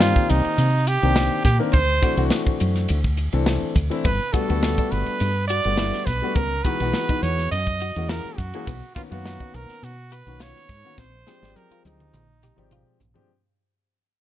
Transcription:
Already playing: G2 D#3 A#3 C4 F4 G4 D5
0.00 snare, hi-hat pedal, ride
0.16 kick
0.29 C2 D#4, hi-hat pedal, ride
0.45 ride
0.58 C3, hi-hat pedal, ride
0.87 G4, hi-hat pedal, ride
1.02 C2 D#3 A#3 C4 D4 G4, ride
1.16 snare, hi-hat pedal, ride
1.44 A#2 G4, kick, snare, hi-hat pedal, ride
1.59 D#3 A#3 C4 D4 A#4
1.73 D2 C5, kick, hi-hat pedal, ride
2.01 E3 A3 C4 D4 F#4, kick, hi-hat pedal, ride
2.17 C2 E3 A3 C4 D4 F#4, ride
2.31 snare, hi-hat pedal, ride
2.46 muted fretless electric bass stroke, kick
2.60 F#2, hi-hat pedal, ride
2.75 snare, ride
2.89 D2, hi-hat pedal, ride
3.04 kick
3.17 hi-hat pedal, ride
3.33 C2 E3 A3 C4 D4 A4, ride
3.46 snare, hi-hat pedal, ride
3.63 muted fretless electric bass stroke
3.75 D2, kick, hi-hat pedal, ride
3.90 E3 A3 C4 D4 E4, ride
4.05 G1 B3 B4, kick, hi-hat pedal, ride
4.33 G3 A3 B3 D4 F#4 A4, muted fretless electric bass stroke, kick, hi-hat pedal, ride
4.48 D2 G3 A3 B3 D4 F#4, ride
4.63 snare, hi-hat pedal, ride
4.78 D4, kick
4.91 G1 B4, hi-hat pedal, ride
5.06 ride
5.20 G2, hi-hat pedal, ride
5.48 F#4 D5, hi-hat pedal, ride
5.64 G1 G3 A3 B3 D4 F#4, ride
5.78 E4, snare, hi-hat pedal, ride
5.93 snare
6.06 B1 B4, kick, snare, hi-hat pedal, ride
6.22 G3 A3 B3 D4 F#4
6.35 C#2 B3 A#4, kick, hi-hat pedal, ride
6.63 E3 G#3 B3 D#4 F#4 B4, kick, hi-hat pedal, ride
6.80 B1 E3 G#3 B3 D#4 F#4, ride
6.94 snare, hi-hat pedal, ride
7.09 D#4, muted fretless electric bass stroke, kick
7.23 E2 C#5, hi-hat pedal, ride
7.39 snare, ride
7.51 F#2 D#5, hi-hat pedal, ride
7.67 kick
7.80 F#4, hi-hat pedal, ride
7.96 E2 E3 G#3 A#3 C#4 F#4, ride
8.09 E4 A#4, snare, hi-hat pedal, ride
8.25 muted fretless electric bass stroke
8.37 F#2 F#4, kick, hi-hat pedal, ride
8.54 E3 G#3 A#3 C#4 G#4, ride
8.67 B1 B3, kick, hi-hat pedal, ride
8.95 D#3 A#3 B3 C#4 F4 F#4, muted fretless electric bass stroke, kick, hi-hat pedal, ride
9.10 F#2 D#3 A#3 B3 C#4 F#4 F5, ride
9.25 snare, hi-hat pedal, ride
9.40 D#4, kick
9.54 B1 A#4, hi-hat pedal, ride
9.70 snare, ride
9.83 B2 F#4, hi-hat pedal, ride
10.12 F#4 B4, hi-hat pedal, ride
10.27 B1 D#3 A#3 B3 C#4 F#4, ride
10.40 F4 C#5, snare, hi-hat pedal, ride
10.56 snare
10.69 G#2, kick, snare, hi-hat pedal, ride
10.85 D#3 A#3 B3 C#4 F#4
10.98 A#1 C4 C5, kick, snare, hi-hat pedal
11.27 F3 G#3 C4 D4 G4 G#4, snare, hi-hat pedal
11.42 G#1 F3 G#3 C4 G4 D5, snare
11.56 A#4, hi-hat pedal, high tom
11.71 F4, muted fretless electric bass stroke
11.85 D2 D#4, hi-hat pedal, high tom
12.00 mid tom
12.13 A#1, hi-hat pedal, mid tom
12.43 G4, hi-hat pedal, mid tom
12.56 G#1 F3 G#3 C4 G4 D5, mid tom
12.71 F4, hi-hat pedal, mid tom
13.00 A#1, floor tom, hi-hat pedal
13.14 F3 G#3 C4 D4 G4, floor tom

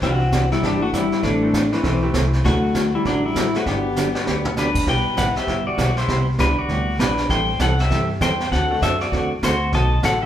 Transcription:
0.02 C2 C3 E3 G3 C4 D4 E4 F#4 G4, brush sweep, kick, snare
0.32 C3 E3 D4 G4, kick, snare, hi-hat pedal
0.51 G3 E4, snare
0.62 G1 C3 E3 G3 C4 D4 E4 G4, brush sweep, kick, snare
0.82 A3 F#4
0.93 C3 E3 G3 D4 E4 G4, kick, snare, hi-hat pedal
1.12 snare
1.23 A1 E3 A3 C4 D4 E4 A4, brush sweep, kick, snare
1.42 E3 A3 C4 E4 A4
1.53 E3 A3 C4 E4 A4, kick, snare, hi-hat pedal
1.72 E3 A3 C4 E4 B4, snare
1.83 B1 E3 A3 C4 E4 A4, brush sweep, kick, snare
2.02 E3 A3 C4 E4 G4
2.14 C2 E3 A3 C4 E4 A4, kick, snare, hi-hat pedal
2.33 snare
2.44 D2 D3 F#3 A3 D4 E4 F#4, brush sweep, kick, snare
2.75 D3 F#3 A3 E4 F#4, kick, snare, hi-hat pedal
2.95 G3 E4
3.04 A1 D3 F#3 A3 D4 E4 F#4, brush sweep, kick, snare
3.25 G3 E4
3.36 D3 F#3 A3 E4 F#4, kick, snare, hi-hat pedal
3.54 A3 F#4, snare
3.66 G1 D3 F#3 B3 D4 G4, brush sweep, kick, snare
3.96 D3 F#3 B3 D4 G4, snare, hi-hat pedal
4.15 G3 B3 D4 F#4 G4, snare
4.27 D2 D3 F#3 B3 D4 G4, snare
4.45 mid tom
4.57 D3 F#3 B3 D4 G4 B4, snare, hi-hat pedal
4.75 kick, crash
4.87 B1 G3 B3 D4 E4 G4 B4 G5, brush sweep, kick, snare
5.17 A1 G3 B3 E4 G4 B4 F#5, kick, snare, hi-hat pedal
5.36 G4 E5, muted upright bass stroke, snare
5.47 G1 G3 B3 E4 G4, brush sweep, kick, snare
5.67 F#4 D5, muted upright bass stroke
5.77 B1 G3 B3 E4 G4, kick, snare, hi-hat pedal
5.96 E4 C5, snare
6.08 C2 C3 G3 B3 E4 G4, brush sweep, kick, snare
6.38 C#2 C3 G3 B3 D4 E4 G4 B4, kick, snare, hi-hat pedal
6.58 F#4 D5, muted upright bass stroke
6.69 D2 C3 G3 B3 E4 G4, brush sweep, kick, snare
6.99 A#1 C3 G3 B3 D4 E4 G4 B4, kick, snare, hi-hat pedal
7.17 snare
7.29 A1 E3 G3 C4 E4 A4 C5 G5, brush sweep, kick, snare
7.59 C2 E3 G3 C4 E4 A4 F#5, kick, snare, hi-hat pedal
7.79 G4 E5, snare
7.90 G2 E3 G3 C4 E4 A4, brush sweep, kick, snare
8.21 E2 E3 G3 C4 E4 A4 C5 G5, kick, snare, hi-hat pedal
8.40 snare
8.51 D2 D3 A3 C4 F#4 A4 F#5, brush sweep, kick, snare
8.70 A3 C4 D4 F#4 A4
8.82 F#2 D3 A3 C4 F#4 A4 E5, kick, snare, hi-hat pedal
9.00 F#4 D5, snare
9.12 E2 D3 A3 C4 F#4 A4, brush sweep, kick, snare
9.42 D2 D3 A3 C4 F#4 A4 C5, kick, snare, hi-hat pedal
9.72 B1 B2 F#3 A3 D#4 F#4 D#5 A5, brush sweep, kick, snare
10.03 A1 B2 F#3 A3 D#4 F#4 A4 F#5, kick, snare, hi-hat pedal
10.22 D#3 A3 B3 G4 A4 E5 F#5

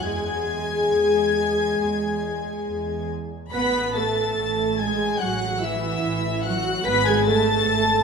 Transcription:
0.03 E2 G#3 G#4 G#5 G#6
0.93 E2
1.80 E2
2.66 E2
3.52 A1 B3 B4 B5 B6
3.95 A3 A4 A5 A6
4.37 A1
4.78 G#3 G#4 G#5 G#6
5.20 A1 F#3 F#4 F#5 F#6
5.62 E3 E4 E5 E6
6.03 A1
6.44 F#3 F#4 F#5 F#6
6.85 G#1 B3 B4 B5 B6
7.06 G#3 G#4 G#5 G#6
7.25 A3 A4 A5 A6
7.66 G#1

